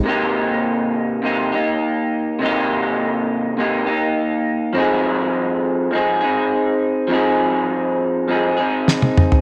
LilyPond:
<<
  \new Staff \with { instrumentName = "Clean electric guitar" } { \time 4/4 \key c \minor \tempo 4 = 102 <c bes ees' g'>2 <c bes ees' g'>8 <bes ees' g'>4. | <c bes ees' g'>2 <c bes ees' g'>8 <bes ees' g'>4. | <f c' ees' aes'>2 <f c' ees' aes'>8 <c' ees' aes'>4. | <f c' ees' aes'>2 <f c' ees' aes'>8 <c' ees' aes'>4. | }
  \new DrumStaff \with { instrumentName = "Drums" } \drummode { \time 4/4 r4 r4 r4 r4 | r4 r4 r4 r4 | r4 r4 r4 r4 | r4 r4 r4 sn16 tommh16 toml16 tomfh16 | }
>>